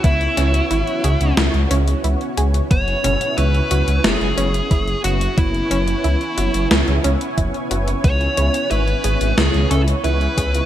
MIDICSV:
0, 0, Header, 1, 6, 480
1, 0, Start_track
1, 0, Key_signature, 4, "minor"
1, 0, Tempo, 666667
1, 30, Time_signature, 4, 2, 24, 8
1, 7672, End_track
2, 0, Start_track
2, 0, Title_t, "Lead electric guitar"
2, 0, Program_c, 0, 29
2, 32, Note_on_c, 0, 64, 81
2, 962, Note_off_c, 0, 64, 0
2, 1952, Note_on_c, 0, 73, 110
2, 2430, Note_off_c, 0, 73, 0
2, 2433, Note_on_c, 0, 71, 94
2, 2912, Note_on_c, 0, 68, 100
2, 2926, Note_off_c, 0, 71, 0
2, 3602, Note_off_c, 0, 68, 0
2, 3631, Note_on_c, 0, 66, 85
2, 3854, Note_off_c, 0, 66, 0
2, 3871, Note_on_c, 0, 64, 83
2, 4802, Note_off_c, 0, 64, 0
2, 5793, Note_on_c, 0, 73, 108
2, 6269, Note_off_c, 0, 73, 0
2, 6272, Note_on_c, 0, 71, 96
2, 6751, Note_on_c, 0, 68, 93
2, 6765, Note_off_c, 0, 71, 0
2, 6989, Note_off_c, 0, 68, 0
2, 6992, Note_on_c, 0, 69, 91
2, 7056, Note_off_c, 0, 69, 0
2, 7231, Note_on_c, 0, 71, 92
2, 7672, Note_off_c, 0, 71, 0
2, 7672, End_track
3, 0, Start_track
3, 0, Title_t, "Analog synth pad"
3, 0, Program_c, 1, 89
3, 0, Note_on_c, 1, 59, 88
3, 0, Note_on_c, 1, 61, 81
3, 0, Note_on_c, 1, 64, 81
3, 0, Note_on_c, 1, 73, 92
3, 30, Note_on_c, 1, 66, 79
3, 1920, Note_off_c, 1, 64, 0
3, 1920, Note_off_c, 1, 73, 0
3, 1949, Note_on_c, 1, 64, 78
3, 1949, Note_on_c, 1, 73, 93
3, 3841, Note_off_c, 1, 66, 0
3, 3871, Note_on_c, 1, 80, 78
3, 7672, Note_off_c, 1, 59, 0
3, 7672, Note_off_c, 1, 61, 0
3, 7672, Note_off_c, 1, 64, 0
3, 7672, Note_off_c, 1, 73, 0
3, 7672, Note_off_c, 1, 80, 0
3, 7672, End_track
4, 0, Start_track
4, 0, Title_t, "Synth arpeggio sound"
4, 0, Program_c, 2, 84
4, 29, Note_on_c, 2, 59, 80
4, 170, Note_off_c, 2, 59, 0
4, 269, Note_on_c, 2, 61, 100
4, 353, Note_off_c, 2, 61, 0
4, 509, Note_on_c, 2, 64, 76
4, 594, Note_off_c, 2, 64, 0
4, 749, Note_on_c, 2, 68, 73
4, 889, Note_off_c, 2, 68, 0
4, 989, Note_on_c, 2, 59, 78
4, 1130, Note_off_c, 2, 59, 0
4, 1229, Note_on_c, 2, 61, 99
4, 1314, Note_off_c, 2, 61, 0
4, 1469, Note_on_c, 2, 64, 73
4, 1554, Note_off_c, 2, 64, 0
4, 1710, Note_on_c, 2, 68, 81
4, 1850, Note_off_c, 2, 68, 0
4, 1950, Note_on_c, 2, 59, 80
4, 2090, Note_off_c, 2, 59, 0
4, 2189, Note_on_c, 2, 61, 98
4, 2274, Note_off_c, 2, 61, 0
4, 2430, Note_on_c, 2, 64, 74
4, 2514, Note_off_c, 2, 64, 0
4, 2670, Note_on_c, 2, 66, 74
4, 2810, Note_off_c, 2, 66, 0
4, 2909, Note_on_c, 2, 59, 84
4, 3050, Note_off_c, 2, 59, 0
4, 3150, Note_on_c, 2, 61, 101
4, 3234, Note_off_c, 2, 61, 0
4, 3390, Note_on_c, 2, 64, 75
4, 3474, Note_off_c, 2, 64, 0
4, 3630, Note_on_c, 2, 66, 81
4, 3770, Note_off_c, 2, 66, 0
4, 3871, Note_on_c, 2, 59, 82
4, 4010, Note_off_c, 2, 59, 0
4, 4110, Note_on_c, 2, 61, 106
4, 4194, Note_off_c, 2, 61, 0
4, 4350, Note_on_c, 2, 64, 74
4, 4434, Note_off_c, 2, 64, 0
4, 4590, Note_on_c, 2, 66, 72
4, 4730, Note_off_c, 2, 66, 0
4, 4831, Note_on_c, 2, 59, 79
4, 4971, Note_off_c, 2, 59, 0
4, 5070, Note_on_c, 2, 61, 101
4, 5154, Note_off_c, 2, 61, 0
4, 5310, Note_on_c, 2, 64, 75
4, 5394, Note_off_c, 2, 64, 0
4, 5550, Note_on_c, 2, 66, 80
4, 5690, Note_off_c, 2, 66, 0
4, 5790, Note_on_c, 2, 59, 83
4, 5930, Note_off_c, 2, 59, 0
4, 6029, Note_on_c, 2, 61, 103
4, 6114, Note_off_c, 2, 61, 0
4, 6270, Note_on_c, 2, 64, 72
4, 6354, Note_off_c, 2, 64, 0
4, 6510, Note_on_c, 2, 68, 75
4, 6650, Note_off_c, 2, 68, 0
4, 6750, Note_on_c, 2, 59, 81
4, 6890, Note_off_c, 2, 59, 0
4, 6989, Note_on_c, 2, 61, 97
4, 7074, Note_off_c, 2, 61, 0
4, 7230, Note_on_c, 2, 64, 71
4, 7314, Note_off_c, 2, 64, 0
4, 7470, Note_on_c, 2, 68, 77
4, 7610, Note_off_c, 2, 68, 0
4, 7672, End_track
5, 0, Start_track
5, 0, Title_t, "Detuned saw bass"
5, 0, Program_c, 3, 39
5, 30, Note_on_c, 3, 37, 87
5, 200, Note_off_c, 3, 37, 0
5, 269, Note_on_c, 3, 37, 100
5, 440, Note_off_c, 3, 37, 0
5, 508, Note_on_c, 3, 32, 81
5, 595, Note_off_c, 3, 32, 0
5, 749, Note_on_c, 3, 37, 95
5, 835, Note_off_c, 3, 37, 0
5, 869, Note_on_c, 3, 37, 80
5, 955, Note_off_c, 3, 37, 0
5, 989, Note_on_c, 3, 37, 94
5, 1075, Note_off_c, 3, 37, 0
5, 1109, Note_on_c, 3, 37, 98
5, 1195, Note_off_c, 3, 37, 0
5, 1229, Note_on_c, 3, 37, 100
5, 1400, Note_off_c, 3, 37, 0
5, 1469, Note_on_c, 3, 37, 82
5, 1555, Note_off_c, 3, 37, 0
5, 1709, Note_on_c, 3, 37, 97
5, 1880, Note_off_c, 3, 37, 0
5, 1950, Note_on_c, 3, 30, 96
5, 2121, Note_off_c, 3, 30, 0
5, 2190, Note_on_c, 3, 30, 98
5, 2275, Note_off_c, 3, 30, 0
5, 2431, Note_on_c, 3, 37, 94
5, 2601, Note_off_c, 3, 37, 0
5, 2670, Note_on_c, 3, 37, 95
5, 2756, Note_off_c, 3, 37, 0
5, 2790, Note_on_c, 3, 37, 93
5, 2876, Note_off_c, 3, 37, 0
5, 2910, Note_on_c, 3, 30, 97
5, 2995, Note_off_c, 3, 30, 0
5, 3030, Note_on_c, 3, 30, 78
5, 3115, Note_off_c, 3, 30, 0
5, 3149, Note_on_c, 3, 30, 94
5, 3320, Note_off_c, 3, 30, 0
5, 3390, Note_on_c, 3, 30, 85
5, 3561, Note_off_c, 3, 30, 0
5, 3630, Note_on_c, 3, 30, 105
5, 3801, Note_off_c, 3, 30, 0
5, 3871, Note_on_c, 3, 30, 85
5, 4041, Note_off_c, 3, 30, 0
5, 4110, Note_on_c, 3, 30, 100
5, 4281, Note_off_c, 3, 30, 0
5, 4350, Note_on_c, 3, 37, 83
5, 4435, Note_off_c, 3, 37, 0
5, 4590, Note_on_c, 3, 30, 94
5, 4676, Note_off_c, 3, 30, 0
5, 4711, Note_on_c, 3, 30, 79
5, 4796, Note_off_c, 3, 30, 0
5, 4831, Note_on_c, 3, 37, 78
5, 4916, Note_off_c, 3, 37, 0
5, 4950, Note_on_c, 3, 37, 83
5, 5036, Note_off_c, 3, 37, 0
5, 5072, Note_on_c, 3, 37, 95
5, 5156, Note_off_c, 3, 37, 0
5, 5311, Note_on_c, 3, 30, 102
5, 5396, Note_off_c, 3, 30, 0
5, 5551, Note_on_c, 3, 30, 91
5, 5721, Note_off_c, 3, 30, 0
5, 5791, Note_on_c, 3, 37, 98
5, 5961, Note_off_c, 3, 37, 0
5, 6031, Note_on_c, 3, 37, 94
5, 6116, Note_off_c, 3, 37, 0
5, 6270, Note_on_c, 3, 32, 93
5, 6441, Note_off_c, 3, 32, 0
5, 6510, Note_on_c, 3, 32, 93
5, 6595, Note_off_c, 3, 32, 0
5, 6631, Note_on_c, 3, 32, 94
5, 6716, Note_off_c, 3, 32, 0
5, 6751, Note_on_c, 3, 37, 101
5, 6836, Note_off_c, 3, 37, 0
5, 6871, Note_on_c, 3, 37, 76
5, 6956, Note_off_c, 3, 37, 0
5, 6991, Note_on_c, 3, 37, 91
5, 7161, Note_off_c, 3, 37, 0
5, 7230, Note_on_c, 3, 37, 82
5, 7401, Note_off_c, 3, 37, 0
5, 7470, Note_on_c, 3, 37, 104
5, 7641, Note_off_c, 3, 37, 0
5, 7672, End_track
6, 0, Start_track
6, 0, Title_t, "Drums"
6, 29, Note_on_c, 9, 42, 56
6, 30, Note_on_c, 9, 36, 116
6, 101, Note_off_c, 9, 42, 0
6, 102, Note_off_c, 9, 36, 0
6, 150, Note_on_c, 9, 42, 26
6, 222, Note_off_c, 9, 42, 0
6, 269, Note_on_c, 9, 38, 37
6, 269, Note_on_c, 9, 42, 95
6, 341, Note_off_c, 9, 38, 0
6, 341, Note_off_c, 9, 42, 0
6, 389, Note_on_c, 9, 42, 51
6, 461, Note_off_c, 9, 42, 0
6, 509, Note_on_c, 9, 42, 53
6, 581, Note_off_c, 9, 42, 0
6, 630, Note_on_c, 9, 42, 27
6, 702, Note_off_c, 9, 42, 0
6, 750, Note_on_c, 9, 42, 88
6, 822, Note_off_c, 9, 42, 0
6, 869, Note_on_c, 9, 42, 51
6, 941, Note_off_c, 9, 42, 0
6, 989, Note_on_c, 9, 38, 125
6, 989, Note_on_c, 9, 42, 55
6, 1061, Note_off_c, 9, 38, 0
6, 1061, Note_off_c, 9, 42, 0
6, 1109, Note_on_c, 9, 42, 25
6, 1181, Note_off_c, 9, 42, 0
6, 1230, Note_on_c, 9, 42, 93
6, 1302, Note_off_c, 9, 42, 0
6, 1350, Note_on_c, 9, 42, 54
6, 1422, Note_off_c, 9, 42, 0
6, 1470, Note_on_c, 9, 42, 54
6, 1542, Note_off_c, 9, 42, 0
6, 1590, Note_on_c, 9, 42, 25
6, 1662, Note_off_c, 9, 42, 0
6, 1710, Note_on_c, 9, 42, 92
6, 1782, Note_off_c, 9, 42, 0
6, 1831, Note_on_c, 9, 42, 53
6, 1903, Note_off_c, 9, 42, 0
6, 1950, Note_on_c, 9, 36, 112
6, 1951, Note_on_c, 9, 42, 51
6, 2022, Note_off_c, 9, 36, 0
6, 2023, Note_off_c, 9, 42, 0
6, 2072, Note_on_c, 9, 42, 24
6, 2144, Note_off_c, 9, 42, 0
6, 2191, Note_on_c, 9, 42, 93
6, 2191, Note_on_c, 9, 45, 58
6, 2263, Note_off_c, 9, 42, 0
6, 2263, Note_off_c, 9, 45, 0
6, 2311, Note_on_c, 9, 42, 51
6, 2383, Note_off_c, 9, 42, 0
6, 2431, Note_on_c, 9, 42, 52
6, 2503, Note_off_c, 9, 42, 0
6, 2552, Note_on_c, 9, 42, 26
6, 2624, Note_off_c, 9, 42, 0
6, 2670, Note_on_c, 9, 42, 92
6, 2742, Note_off_c, 9, 42, 0
6, 2792, Note_on_c, 9, 42, 54
6, 2864, Note_off_c, 9, 42, 0
6, 2911, Note_on_c, 9, 38, 122
6, 2911, Note_on_c, 9, 42, 55
6, 2983, Note_off_c, 9, 38, 0
6, 2983, Note_off_c, 9, 42, 0
6, 3032, Note_on_c, 9, 42, 24
6, 3104, Note_off_c, 9, 42, 0
6, 3151, Note_on_c, 9, 42, 91
6, 3223, Note_off_c, 9, 42, 0
6, 3271, Note_on_c, 9, 42, 52
6, 3343, Note_off_c, 9, 42, 0
6, 3391, Note_on_c, 9, 36, 104
6, 3391, Note_on_c, 9, 42, 53
6, 3463, Note_off_c, 9, 36, 0
6, 3463, Note_off_c, 9, 42, 0
6, 3511, Note_on_c, 9, 42, 26
6, 3583, Note_off_c, 9, 42, 0
6, 3630, Note_on_c, 9, 42, 90
6, 3702, Note_off_c, 9, 42, 0
6, 3752, Note_on_c, 9, 42, 54
6, 3824, Note_off_c, 9, 42, 0
6, 3871, Note_on_c, 9, 36, 118
6, 3871, Note_on_c, 9, 42, 49
6, 3943, Note_off_c, 9, 36, 0
6, 3943, Note_off_c, 9, 42, 0
6, 3992, Note_on_c, 9, 42, 24
6, 4064, Note_off_c, 9, 42, 0
6, 4111, Note_on_c, 9, 42, 89
6, 4183, Note_off_c, 9, 42, 0
6, 4231, Note_on_c, 9, 42, 48
6, 4303, Note_off_c, 9, 42, 0
6, 4351, Note_on_c, 9, 42, 51
6, 4423, Note_off_c, 9, 42, 0
6, 4470, Note_on_c, 9, 42, 25
6, 4542, Note_off_c, 9, 42, 0
6, 4591, Note_on_c, 9, 42, 83
6, 4663, Note_off_c, 9, 42, 0
6, 4710, Note_on_c, 9, 42, 51
6, 4782, Note_off_c, 9, 42, 0
6, 4831, Note_on_c, 9, 38, 127
6, 4831, Note_on_c, 9, 42, 51
6, 4903, Note_off_c, 9, 38, 0
6, 4903, Note_off_c, 9, 42, 0
6, 4952, Note_on_c, 9, 42, 24
6, 5024, Note_off_c, 9, 42, 0
6, 5071, Note_on_c, 9, 42, 84
6, 5143, Note_off_c, 9, 42, 0
6, 5192, Note_on_c, 9, 42, 49
6, 5264, Note_off_c, 9, 42, 0
6, 5311, Note_on_c, 9, 36, 59
6, 5311, Note_on_c, 9, 42, 52
6, 5383, Note_off_c, 9, 36, 0
6, 5383, Note_off_c, 9, 42, 0
6, 5431, Note_on_c, 9, 42, 24
6, 5503, Note_off_c, 9, 42, 0
6, 5551, Note_on_c, 9, 42, 86
6, 5623, Note_off_c, 9, 42, 0
6, 5671, Note_on_c, 9, 42, 50
6, 5743, Note_off_c, 9, 42, 0
6, 5791, Note_on_c, 9, 36, 110
6, 5791, Note_on_c, 9, 42, 47
6, 5863, Note_off_c, 9, 36, 0
6, 5863, Note_off_c, 9, 42, 0
6, 5910, Note_on_c, 9, 42, 23
6, 5982, Note_off_c, 9, 42, 0
6, 6029, Note_on_c, 9, 42, 86
6, 6101, Note_off_c, 9, 42, 0
6, 6150, Note_on_c, 9, 42, 49
6, 6222, Note_off_c, 9, 42, 0
6, 6269, Note_on_c, 9, 42, 50
6, 6341, Note_off_c, 9, 42, 0
6, 6390, Note_on_c, 9, 42, 24
6, 6462, Note_off_c, 9, 42, 0
6, 6510, Note_on_c, 9, 42, 85
6, 6582, Note_off_c, 9, 42, 0
6, 6631, Note_on_c, 9, 42, 48
6, 6703, Note_off_c, 9, 42, 0
6, 6752, Note_on_c, 9, 38, 116
6, 6752, Note_on_c, 9, 42, 51
6, 6824, Note_off_c, 9, 38, 0
6, 6824, Note_off_c, 9, 42, 0
6, 6871, Note_on_c, 9, 42, 24
6, 6943, Note_off_c, 9, 42, 0
6, 6991, Note_on_c, 9, 42, 81
6, 7063, Note_off_c, 9, 42, 0
6, 7111, Note_on_c, 9, 42, 47
6, 7183, Note_off_c, 9, 42, 0
6, 7231, Note_on_c, 9, 42, 51
6, 7303, Note_off_c, 9, 42, 0
6, 7351, Note_on_c, 9, 42, 24
6, 7423, Note_off_c, 9, 42, 0
6, 7470, Note_on_c, 9, 36, 58
6, 7472, Note_on_c, 9, 42, 82
6, 7542, Note_off_c, 9, 36, 0
6, 7544, Note_off_c, 9, 42, 0
6, 7592, Note_on_c, 9, 42, 49
6, 7664, Note_off_c, 9, 42, 0
6, 7672, End_track
0, 0, End_of_file